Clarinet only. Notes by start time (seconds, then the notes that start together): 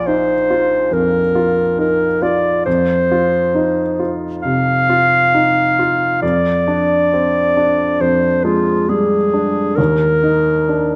0.07 C5
0.93 A#4
1.80 A#4
2.23 D5
2.65 C5
4.42 F5
6.22 D5
8.01 C5
8.44 F4
8.89 G#4
9.76 A#4